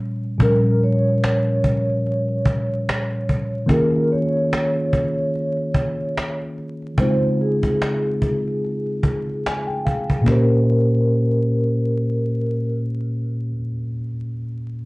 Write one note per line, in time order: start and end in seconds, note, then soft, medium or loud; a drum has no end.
0.00 0.35 A#2 medium
0.00 0.35 F3 medium
0.00 0.36 G3 medium
0.00 0.36 C#4 medium
0.00 0.37 C#5 medium
0.00 cajon slap soft
0.24 cajon slap soft
0.38 3.64 A#2 medium
0.38 3.65 F3 medium
0.38 3.65 G3 soft
0.38 3.66 C#4 medium
0.38 0.78 A#4 medium
0.38 cajon bass loud
0.43 3.66 A#4 medium
0.66 cajon slap soft
0.83 3.66 C#5 medium
0.83 cajon slap soft
1.08 cajon slap soft
1.24 cajon slap loud
1.24 cajon slap medium
1.47 cajon slap soft
1.64 cajon bass medium
1.90 cajon slap soft
2.07 cajon slap soft
2.28 cajon slap soft
2.45 cajon bass medium
2.72 cajon slap soft
2.89 cajon slap loud
2.89 cajon slap medium
3.13 cajon slap soft
3.29 cajon bass medium
3.54 cajon slap soft
3.66 6.92 D#3 medium
3.66 6.93 A#3 medium
3.66 6.93 C#4 medium
3.66 6.94 F4 medium
3.66 cajon bass loud
3.71 6.95 G#4 medium
3.71 4.07 A#4 medium
3.95 cajon slap soft
4.12 6.36 C#5 medium
4.12 cajon slap soft
4.37 cajon slap soft
4.53 cajon slap loud
4.53 cajon slap medium
4.76 cajon slap soft
4.93 cajon bass medium
5.19 cajon slap soft
5.35 cajon slap soft
5.57 cajon slap soft
5.74 cajon bass medium
6.01 cajon slap soft
6.17 cajon slap loud
6.17 cajon slap medium
6.42 cajon slap soft
6.58 cajon slap soft
6.82 cajon slap soft
6.98 10.23 C#3 medium
6.98 10.23 G#3 medium
6.98 10.24 C4 medium
6.98 7.36 C5 medium
6.98 cajon bass loud
7.02 10.24 D#4 medium
7.02 10.25 F4 medium
7.25 cajon slap soft
7.41 10.24 G#4 medium
7.41 cajon slap soft
7.63 cajon bass medium
7.82 cajon slap loud
7.82 cajon slap medium
8.05 cajon slap soft
8.22 cajon bass medium
8.48 cajon slap soft
8.64 cajon slap soft
8.86 cajon slap soft
9.03 cajon bass medium
9.29 cajon slap soft
9.46 9.68 G#5 medium
9.46 cajon slap loud
9.46 cajon slap medium
9.67 9.84 G5 medium
9.67 cajon slap soft
9.85 10.23 F5 medium
9.85 cajon bass medium
10.10 cajon bass medium
10.21 13.49 A#2 medium
10.21 13.52 A#3 medium
10.26 13.54 C#4 medium
10.26 13.57 G4 medium
10.26 12.70 A#4 medium
10.26 cajon bass medium
10.26 cajon slap medium
10.31 13.59 C5 medium